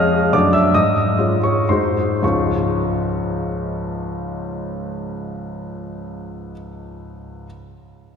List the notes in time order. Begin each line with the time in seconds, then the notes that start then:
Already playing: F2 G#3 C#4 G#4 D#5 F5 D#6 F6
0.33 F#2 A3 D4 F#4 D5 D6
0.53 E5 E6
0.74 G#2 D#5 D#6
1.18 G#3 C#4 F4
1.44 C#5 C#6
1.69 G#2 G#3 D#4 F#4 C5 C6
2.22 C#2 G#2 F3 G#3 C#4 F4 C#6